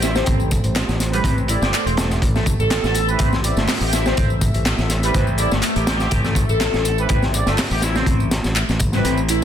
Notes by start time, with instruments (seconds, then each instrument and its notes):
Already playing: fingered electric bass A1, analog synth pad A3 G4 C5
0.02 analog synth lead E4, snare, closed hi-hat, tambourine
0.15 analog synth lead C4, snare, tambourine
0.26 fingered electric bass A1, analog synth lead C4, kick, closed hi-hat, tambourine
0.40 tambourine
0.51 kick, closed hi-hat, tambourine
0.64 fingered electric bass A1, closed hi-hat, tambourine
0.76 snare, clap, closed hi-hat, tambourine
0.89 fingered electric bass A1, snare, tambourine
1.00 snare, closed hi-hat, tambourine
1.13 analog synth lead G3, brass ensemble C4 E4 G4 B4, closed hi-hat, tambourine
1.24 fingered electric bass A1, analog synth lead C4, kick, closed hi-hat, tambourine
1.38 tambourine
1.48 brass ensemble C4 E4 G4 D5, analog synth lead E4, closed hi-hat, tambourine
1.62 fingered electric bass G1, analog synth lead G4, snare, tambourine
1.73 analog synth lead D4, clap, closed hi-hat, tambourine
1.86 fingered electric bass E1, analog synth lead C4, closed hi-hat, tambourine
1.97 analog synth lead A3, snare, closed hi-hat, tambourine
2.10 snare, tambourine
2.22 fingered electric bass A1, analog synth pad E5, kick, closed hi-hat, tambourine
2.35 analog synth lead A3, snare, tambourine
2.46 kick, closed hi-hat, tambourine
2.59 fingered electric bass A1, analog synth lead A4, tambourine
2.71 snare, clap, closed hi-hat, tambourine
2.84 fingered electric bass A1, snare, tambourine
2.95 closed hi-hat, tambourine
3.08 brass ensemble C4 E4 G4 B4, tambourine
3.19 fingered electric bass A1, analog synth lead C4, kick, closed hi-hat, tambourine
3.33 snare, tambourine
3.44 brass ensemble C4 E4 G4 D5, closed hi-hat, tambourine
3.56 fingered electric bass G1, analog synth lead A3, snare, tambourine
3.68 snare, clap, open hi-hat, tambourine
3.81 fingered electric bass A1, analog synth lead G4, tambourine
3.93 analog synth lead E4, snare, closed hi-hat, tambourine
4.06 analog synth lead C4, snare, tambourine
4.17 fingered electric bass A1, analog synth lead C4, kick, closed hi-hat, tambourine
4.30 tambourine
4.41 kick, closed hi-hat, tambourine
4.54 fingered electric bass A1, closed hi-hat, tambourine
4.65 snare, clap, closed hi-hat, tambourine
4.78 fingered electric bass A1, snare, tambourine
4.89 snare, closed hi-hat, tambourine
5.03 analog synth lead G3, brass ensemble C4 E4 G4 B4, closed hi-hat, tambourine
5.14 fingered electric bass A1, analog synth lead C4, kick, closed hi-hat, tambourine
5.27 tambourine
5.38 brass ensemble C4 E4 G4 D5, analog synth lead E4, closed hi-hat, tambourine
5.51 fingered electric bass G1, analog synth lead A3, snare, tambourine
5.62 analog synth lead A3, clap, closed hi-hat, tambourine
5.76 fingered electric bass A1, analog synth lead G4, closed hi-hat, tambourine
5.87 analog synth lead G4, snare, closed hi-hat, tambourine
6.00 snare, tambourine
6.11 fingered electric bass A1, kick, closed hi-hat, tambourine
6.24 analog synth lead A3, snare, tambourine
6.35 kick, closed hi-hat, tambourine
6.49 fingered electric bass A1, analog synth lead A4, tambourine
6.61 snare, clap, closed hi-hat, tambourine
6.74 fingered electric bass A1, snare, tambourine
6.85 closed hi-hat, tambourine
6.98 brass ensemble C4 E4 G4 B4, tambourine
7.09 fingered electric bass A1, analog synth lead C4, kick, closed hi-hat, tambourine
7.22 snare, tambourine
7.34 brass ensemble C4 E4 G4 D5, closed hi-hat, tambourine
7.46 fingered electric bass G1, analog synth lead A3, snare, tambourine
7.58 snare, clap, open hi-hat, tambourine
7.71 fingered electric bass A1, analog synth lead G4, tambourine
7.82 analog synth lead E4, snare, closed hi-hat, tambourine
7.96 analog synth lead C4, snare, tambourine
8.06 fingered electric bass A1, analog synth lead C4, kick, closed hi-hat, tambourine
8.20 tambourine
8.31 snare, closed hi-hat, tambourine
8.44 fingered electric bass A1, snare, tambourine
8.55 clap, closed hi-hat, tambourine
8.69 fingered electric bass A1, snare, tambourine
8.80 kick, closed hi-hat, tambourine
8.92 analog synth lead G3, brass ensemble C4 E4 G4 B4, snare, tambourine
9.04 fingered electric bass A1, analog synth lead C4, closed hi-hat, tambourine
9.17 tambourine
9.28 analog synth lead E4, closed hi-hat, tambourine